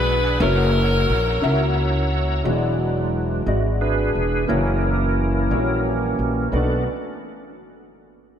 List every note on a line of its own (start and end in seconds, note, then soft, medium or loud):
0.00 0.36 B1 medium
0.00 0.42 E3 medium
0.00 0.42 G#3 medium
0.00 0.37 D4 medium
0.00 0.42 D4 medium
0.00 0.41 E4 medium
0.00 0.41 F#4 medium
0.00 0.37 G#4 medium
0.00 0.37 B4 loud
0.00 0.42 B4 medium
0.00 0.38 D5 medium
0.00 2.40 F#5 medium
0.00 0.38 G#5 medium
0.00 2.40 E6 medium
0.40 1.04 F#1 loud
0.40 1.25 A#3 medium
0.40 1.25 C#4 medium
0.40 1.73 C#4 medium
0.40 1.26 E4 medium
0.40 1.73 E4 medium
0.40 1.26 F#4 medium
0.40 1.77 A#4 loud
0.40 1.26 C#5 medium
0.40 2.43 C#5 medium
0.40 2.42 A#5 medium
1.10 1.40 A#1 loud
1.42 2.41 C#2 medium
1.42 2.27 A#3 medium
1.42 2.27 C#4 medium
1.42 2.27 E4 medium
1.42 2.28 F#4 medium
1.42 2.28 E5 medium
2.44 3.43 E1 medium
2.44 3.43 E3 medium
2.44 3.42 F#3 soft
2.44 3.29 G#3 medium
2.44 3.43 G#3 soft
2.44 3.43 D4 soft
2.44 3.30 E4 medium
2.44 3.30 F#4 medium
2.44 2.52 C#5 medium
2.53 3.34 D5 medium
3.46 4.10 G#1 medium
3.46 4.32 G#3 medium
3.46 4.32 E4 medium
3.46 4.32 F#4 medium
3.46 3.63 F#4 medium
3.46 4.32 D5 medium
3.81 4.45 D4 medium
3.81 4.45 G#4 medium
3.81 4.51 B4 loud
4.15 4.46 E1 medium
4.47 5.47 F#1 medium
4.47 6.48 E3 soft
4.47 5.33 A#3 medium
4.47 6.49 A#3 soft
4.47 6.49 C#4 medium
4.47 5.34 E4 medium
4.47 5.81 E4 medium
4.47 5.34 F#4 medium
4.47 5.81 A#4 medium
4.47 5.34 C#5 medium
5.50 6.15 A#1 medium
5.50 5.57 G3 medium
5.50 6.36 E4 medium
5.50 6.36 F#4 medium
5.50 6.36 C#5 medium
5.56 6.39 A#3 medium
6.19 6.50 A#1 medium
6.52 6.84 B1 medium
6.52 6.84 A3 medium
6.52 6.84 B3 soft
6.52 6.84 D4 soft
6.52 6.84 D4 medium
6.52 6.84 F#4 soft
6.52 6.84 F#4 medium
6.52 6.84 A4 soft
6.52 6.84 B4 medium
6.52 6.84 D5 medium